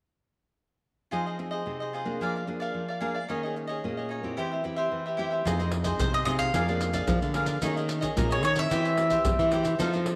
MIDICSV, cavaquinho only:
0, 0, Header, 1, 3, 480
1, 0, Start_track
1, 0, Key_signature, -4, "minor"
1, 0, Tempo, 542495
1, 990, Time_signature, 4, 2, 24, 8
1, 8985, End_track
2, 0, Start_track
2, 0, Title_t, "Cavaquinho"
2, 0, Program_c, 0, 24
2, 984, Note_on_c, 0, 65, 61
2, 991, Note_on_c, 0, 68, 70
2, 998, Note_on_c, 0, 72, 68
2, 1001, Note_on_c, 0, 75, 69
2, 1098, Note_off_c, 0, 65, 0
2, 1101, Note_off_c, 0, 68, 0
2, 1105, Note_off_c, 0, 72, 0
2, 1106, Note_off_c, 0, 75, 0
2, 1118, Note_on_c, 0, 75, 42
2, 1124, Note_on_c, 0, 72, 40
2, 1135, Note_on_c, 0, 68, 34
2, 1219, Note_off_c, 0, 68, 0
2, 1220, Note_off_c, 0, 72, 0
2, 1225, Note_off_c, 0, 75, 0
2, 1334, Note_on_c, 0, 75, 61
2, 1344, Note_on_c, 0, 72, 52
2, 1355, Note_on_c, 0, 68, 47
2, 1573, Note_off_c, 0, 75, 0
2, 1578, Note_off_c, 0, 72, 0
2, 1583, Note_off_c, 0, 68, 0
2, 1594, Note_on_c, 0, 75, 45
2, 1607, Note_on_c, 0, 72, 43
2, 1613, Note_on_c, 0, 68, 36
2, 1703, Note_off_c, 0, 75, 0
2, 1707, Note_off_c, 0, 68, 0
2, 1709, Note_off_c, 0, 72, 0
2, 1709, Note_on_c, 0, 65, 43
2, 1718, Note_on_c, 0, 68, 49
2, 1723, Note_on_c, 0, 72, 48
2, 1730, Note_on_c, 0, 75, 45
2, 1940, Note_off_c, 0, 65, 0
2, 1945, Note_off_c, 0, 68, 0
2, 1947, Note_off_c, 0, 72, 0
2, 1951, Note_off_c, 0, 75, 0
2, 1956, Note_on_c, 0, 68, 67
2, 1963, Note_on_c, 0, 70, 65
2, 1969, Note_on_c, 0, 77, 62
2, 1975, Note_on_c, 0, 74, 75
2, 2064, Note_off_c, 0, 68, 0
2, 2067, Note_off_c, 0, 70, 0
2, 2070, Note_off_c, 0, 77, 0
2, 2073, Note_off_c, 0, 74, 0
2, 2083, Note_on_c, 0, 74, 39
2, 2091, Note_on_c, 0, 77, 41
2, 2099, Note_on_c, 0, 70, 35
2, 2183, Note_off_c, 0, 70, 0
2, 2186, Note_off_c, 0, 77, 0
2, 2187, Note_off_c, 0, 74, 0
2, 2299, Note_on_c, 0, 74, 65
2, 2313, Note_on_c, 0, 77, 65
2, 2320, Note_on_c, 0, 70, 57
2, 2535, Note_off_c, 0, 74, 0
2, 2543, Note_off_c, 0, 77, 0
2, 2546, Note_off_c, 0, 70, 0
2, 2552, Note_on_c, 0, 74, 45
2, 2565, Note_on_c, 0, 77, 42
2, 2573, Note_on_c, 0, 70, 41
2, 2654, Note_off_c, 0, 70, 0
2, 2658, Note_on_c, 0, 68, 68
2, 2660, Note_off_c, 0, 77, 0
2, 2662, Note_off_c, 0, 74, 0
2, 2665, Note_on_c, 0, 70, 68
2, 2670, Note_on_c, 0, 77, 69
2, 2678, Note_on_c, 0, 74, 66
2, 2771, Note_off_c, 0, 74, 0
2, 2775, Note_off_c, 0, 68, 0
2, 2779, Note_off_c, 0, 70, 0
2, 2781, Note_off_c, 0, 77, 0
2, 2782, Note_on_c, 0, 74, 43
2, 2792, Note_on_c, 0, 77, 47
2, 2802, Note_on_c, 0, 70, 36
2, 2897, Note_off_c, 0, 74, 0
2, 2902, Note_off_c, 0, 77, 0
2, 2906, Note_on_c, 0, 63, 61
2, 2907, Note_off_c, 0, 70, 0
2, 2914, Note_on_c, 0, 68, 65
2, 2918, Note_on_c, 0, 73, 69
2, 2925, Note_on_c, 0, 75, 67
2, 3019, Note_off_c, 0, 63, 0
2, 3023, Note_off_c, 0, 68, 0
2, 3025, Note_off_c, 0, 73, 0
2, 3026, Note_off_c, 0, 75, 0
2, 3037, Note_on_c, 0, 75, 46
2, 3051, Note_on_c, 0, 73, 41
2, 3059, Note_on_c, 0, 68, 37
2, 3143, Note_off_c, 0, 68, 0
2, 3144, Note_off_c, 0, 75, 0
2, 3151, Note_off_c, 0, 73, 0
2, 3251, Note_on_c, 0, 75, 64
2, 3266, Note_on_c, 0, 73, 55
2, 3276, Note_on_c, 0, 68, 52
2, 3492, Note_off_c, 0, 75, 0
2, 3499, Note_off_c, 0, 73, 0
2, 3504, Note_off_c, 0, 68, 0
2, 3514, Note_on_c, 0, 75, 42
2, 3527, Note_on_c, 0, 73, 39
2, 3532, Note_on_c, 0, 68, 33
2, 3618, Note_on_c, 0, 63, 44
2, 3621, Note_off_c, 0, 68, 0
2, 3623, Note_off_c, 0, 75, 0
2, 3626, Note_off_c, 0, 73, 0
2, 3632, Note_on_c, 0, 68, 45
2, 3637, Note_on_c, 0, 73, 47
2, 3639, Note_on_c, 0, 75, 53
2, 3855, Note_off_c, 0, 63, 0
2, 3862, Note_off_c, 0, 68, 0
2, 3864, Note_off_c, 0, 73, 0
2, 3865, Note_off_c, 0, 75, 0
2, 3865, Note_on_c, 0, 64, 66
2, 3870, Note_on_c, 0, 67, 76
2, 3878, Note_on_c, 0, 72, 73
2, 3884, Note_on_c, 0, 76, 78
2, 3979, Note_off_c, 0, 64, 0
2, 3981, Note_off_c, 0, 67, 0
2, 3984, Note_off_c, 0, 76, 0
2, 3985, Note_off_c, 0, 72, 0
2, 3995, Note_on_c, 0, 76, 44
2, 4006, Note_on_c, 0, 72, 41
2, 4014, Note_on_c, 0, 67, 39
2, 4097, Note_off_c, 0, 67, 0
2, 4098, Note_off_c, 0, 72, 0
2, 4103, Note_off_c, 0, 76, 0
2, 4215, Note_on_c, 0, 76, 69
2, 4226, Note_on_c, 0, 72, 63
2, 4237, Note_on_c, 0, 67, 55
2, 4453, Note_off_c, 0, 76, 0
2, 4459, Note_off_c, 0, 72, 0
2, 4465, Note_off_c, 0, 67, 0
2, 4474, Note_on_c, 0, 76, 44
2, 4482, Note_on_c, 0, 72, 42
2, 4496, Note_on_c, 0, 67, 42
2, 4574, Note_off_c, 0, 67, 0
2, 4575, Note_on_c, 0, 64, 68
2, 4583, Note_off_c, 0, 76, 0
2, 4584, Note_off_c, 0, 72, 0
2, 4584, Note_on_c, 0, 67, 64
2, 4594, Note_on_c, 0, 72, 69
2, 4595, Note_on_c, 0, 76, 73
2, 4683, Note_off_c, 0, 76, 0
2, 4693, Note_off_c, 0, 64, 0
2, 4693, Note_off_c, 0, 72, 0
2, 4694, Note_on_c, 0, 76, 49
2, 4698, Note_off_c, 0, 67, 0
2, 4704, Note_on_c, 0, 72, 41
2, 4716, Note_on_c, 0, 67, 39
2, 4813, Note_off_c, 0, 76, 0
2, 4818, Note_off_c, 0, 72, 0
2, 4824, Note_off_c, 0, 67, 0
2, 4824, Note_on_c, 0, 65, 70
2, 4833, Note_on_c, 0, 68, 68
2, 4837, Note_on_c, 0, 72, 75
2, 4841, Note_on_c, 0, 75, 77
2, 4936, Note_off_c, 0, 75, 0
2, 4938, Note_off_c, 0, 65, 0
2, 4942, Note_off_c, 0, 68, 0
2, 4944, Note_off_c, 0, 72, 0
2, 4947, Note_on_c, 0, 75, 43
2, 4959, Note_on_c, 0, 72, 40
2, 4968, Note_on_c, 0, 68, 39
2, 5056, Note_off_c, 0, 68, 0
2, 5059, Note_off_c, 0, 75, 0
2, 5061, Note_off_c, 0, 72, 0
2, 5168, Note_on_c, 0, 75, 62
2, 5178, Note_on_c, 0, 72, 60
2, 5187, Note_on_c, 0, 68, 50
2, 5409, Note_off_c, 0, 75, 0
2, 5414, Note_off_c, 0, 72, 0
2, 5419, Note_off_c, 0, 68, 0
2, 5428, Note_on_c, 0, 75, 46
2, 5443, Note_on_c, 0, 72, 39
2, 5452, Note_on_c, 0, 68, 36
2, 5536, Note_off_c, 0, 68, 0
2, 5537, Note_on_c, 0, 65, 49
2, 5540, Note_off_c, 0, 75, 0
2, 5541, Note_off_c, 0, 72, 0
2, 5546, Note_on_c, 0, 68, 46
2, 5551, Note_on_c, 0, 72, 51
2, 5558, Note_on_c, 0, 75, 53
2, 5774, Note_off_c, 0, 65, 0
2, 5779, Note_off_c, 0, 68, 0
2, 5781, Note_off_c, 0, 72, 0
2, 5784, Note_off_c, 0, 75, 0
2, 5789, Note_on_c, 0, 68, 73
2, 5794, Note_on_c, 0, 70, 73
2, 5801, Note_on_c, 0, 77, 73
2, 5808, Note_on_c, 0, 74, 82
2, 5900, Note_off_c, 0, 68, 0
2, 5903, Note_off_c, 0, 70, 0
2, 5906, Note_off_c, 0, 77, 0
2, 5907, Note_off_c, 0, 74, 0
2, 5918, Note_on_c, 0, 74, 45
2, 5926, Note_on_c, 0, 77, 41
2, 5935, Note_on_c, 0, 70, 38
2, 6020, Note_off_c, 0, 70, 0
2, 6023, Note_off_c, 0, 77, 0
2, 6024, Note_off_c, 0, 74, 0
2, 6138, Note_on_c, 0, 74, 68
2, 6152, Note_on_c, 0, 77, 63
2, 6163, Note_on_c, 0, 70, 51
2, 6374, Note_off_c, 0, 74, 0
2, 6381, Note_off_c, 0, 77, 0
2, 6387, Note_off_c, 0, 70, 0
2, 6393, Note_on_c, 0, 74, 49
2, 6403, Note_on_c, 0, 77, 42
2, 6413, Note_on_c, 0, 70, 38
2, 6493, Note_off_c, 0, 70, 0
2, 6497, Note_on_c, 0, 68, 58
2, 6499, Note_off_c, 0, 77, 0
2, 6502, Note_off_c, 0, 74, 0
2, 6504, Note_on_c, 0, 70, 66
2, 6509, Note_on_c, 0, 77, 63
2, 6517, Note_on_c, 0, 74, 70
2, 6594, Note_off_c, 0, 74, 0
2, 6605, Note_on_c, 0, 74, 42
2, 6606, Note_off_c, 0, 77, 0
2, 6614, Note_off_c, 0, 68, 0
2, 6614, Note_off_c, 0, 70, 0
2, 6617, Note_on_c, 0, 77, 45
2, 6625, Note_on_c, 0, 70, 37
2, 6727, Note_off_c, 0, 74, 0
2, 6734, Note_off_c, 0, 77, 0
2, 6737, Note_off_c, 0, 70, 0
2, 6741, Note_on_c, 0, 63, 71
2, 6750, Note_on_c, 0, 68, 67
2, 6755, Note_on_c, 0, 73, 72
2, 6759, Note_on_c, 0, 75, 78
2, 6856, Note_off_c, 0, 63, 0
2, 6857, Note_off_c, 0, 75, 0
2, 6860, Note_off_c, 0, 68, 0
2, 6863, Note_off_c, 0, 73, 0
2, 6868, Note_on_c, 0, 75, 48
2, 6883, Note_on_c, 0, 73, 44
2, 6889, Note_on_c, 0, 68, 40
2, 6976, Note_off_c, 0, 73, 0
2, 6977, Note_off_c, 0, 68, 0
2, 6979, Note_off_c, 0, 75, 0
2, 7086, Note_on_c, 0, 75, 67
2, 7096, Note_on_c, 0, 73, 60
2, 7107, Note_on_c, 0, 68, 51
2, 7328, Note_off_c, 0, 75, 0
2, 7333, Note_off_c, 0, 73, 0
2, 7337, Note_on_c, 0, 75, 44
2, 7339, Note_off_c, 0, 68, 0
2, 7349, Note_on_c, 0, 73, 40
2, 7356, Note_on_c, 0, 68, 36
2, 7443, Note_off_c, 0, 68, 0
2, 7446, Note_on_c, 0, 63, 46
2, 7450, Note_off_c, 0, 73, 0
2, 7453, Note_off_c, 0, 75, 0
2, 7453, Note_on_c, 0, 68, 44
2, 7461, Note_on_c, 0, 73, 49
2, 7469, Note_on_c, 0, 75, 48
2, 7688, Note_off_c, 0, 63, 0
2, 7691, Note_off_c, 0, 68, 0
2, 7695, Note_off_c, 0, 73, 0
2, 7696, Note_on_c, 0, 64, 73
2, 7699, Note_off_c, 0, 75, 0
2, 7709, Note_on_c, 0, 67, 75
2, 7710, Note_on_c, 0, 72, 69
2, 7716, Note_on_c, 0, 76, 74
2, 7813, Note_off_c, 0, 64, 0
2, 7815, Note_off_c, 0, 76, 0
2, 7819, Note_off_c, 0, 67, 0
2, 7820, Note_off_c, 0, 72, 0
2, 7825, Note_on_c, 0, 76, 47
2, 7837, Note_on_c, 0, 72, 43
2, 7844, Note_on_c, 0, 67, 37
2, 7931, Note_off_c, 0, 72, 0
2, 7934, Note_off_c, 0, 67, 0
2, 7937, Note_off_c, 0, 76, 0
2, 8052, Note_on_c, 0, 76, 67
2, 8066, Note_on_c, 0, 72, 64
2, 8076, Note_on_c, 0, 67, 62
2, 8291, Note_off_c, 0, 76, 0
2, 8298, Note_off_c, 0, 72, 0
2, 8302, Note_off_c, 0, 67, 0
2, 8308, Note_on_c, 0, 76, 52
2, 8323, Note_on_c, 0, 72, 45
2, 8328, Note_on_c, 0, 67, 39
2, 8411, Note_off_c, 0, 67, 0
2, 8413, Note_on_c, 0, 64, 60
2, 8417, Note_off_c, 0, 72, 0
2, 8418, Note_off_c, 0, 76, 0
2, 8422, Note_on_c, 0, 67, 67
2, 8427, Note_on_c, 0, 72, 72
2, 8435, Note_on_c, 0, 76, 67
2, 8513, Note_off_c, 0, 76, 0
2, 8523, Note_on_c, 0, 76, 49
2, 8527, Note_off_c, 0, 72, 0
2, 8531, Note_off_c, 0, 64, 0
2, 8533, Note_off_c, 0, 67, 0
2, 8537, Note_on_c, 0, 72, 42
2, 8544, Note_on_c, 0, 67, 41
2, 8646, Note_off_c, 0, 76, 0
2, 8653, Note_off_c, 0, 72, 0
2, 8656, Note_off_c, 0, 67, 0
2, 8658, Note_on_c, 0, 63, 67
2, 8666, Note_on_c, 0, 69, 73
2, 8675, Note_on_c, 0, 72, 78
2, 8678, Note_on_c, 0, 77, 78
2, 8773, Note_off_c, 0, 63, 0
2, 8775, Note_off_c, 0, 77, 0
2, 8777, Note_off_c, 0, 69, 0
2, 8782, Note_off_c, 0, 72, 0
2, 8785, Note_on_c, 0, 77, 47
2, 8798, Note_on_c, 0, 72, 41
2, 8807, Note_on_c, 0, 69, 38
2, 8889, Note_off_c, 0, 69, 0
2, 8892, Note_off_c, 0, 72, 0
2, 8897, Note_off_c, 0, 77, 0
2, 8985, End_track
3, 0, Start_track
3, 0, Title_t, "Muted cavaquinho strokes"
3, 1228, Note_on_c, 9, 29, 29
3, 1317, Note_off_c, 9, 29, 0
3, 2189, Note_on_c, 9, 29, 36
3, 2277, Note_off_c, 9, 29, 0
3, 3152, Note_on_c, 9, 29, 34
3, 3240, Note_off_c, 9, 29, 0
3, 4104, Note_on_c, 9, 29, 38
3, 4193, Note_off_c, 9, 29, 0
3, 5061, Note_on_c, 9, 29, 37
3, 5150, Note_off_c, 9, 29, 0
3, 6029, Note_on_c, 9, 29, 33
3, 6117, Note_off_c, 9, 29, 0
3, 6984, Note_on_c, 9, 29, 34
3, 7072, Note_off_c, 9, 29, 0
3, 7937, Note_on_c, 9, 29, 37
3, 8026, Note_off_c, 9, 29, 0
3, 8897, Note_on_c, 9, 29, 34
3, 8985, Note_off_c, 9, 29, 0
3, 8985, End_track
0, 0, End_of_file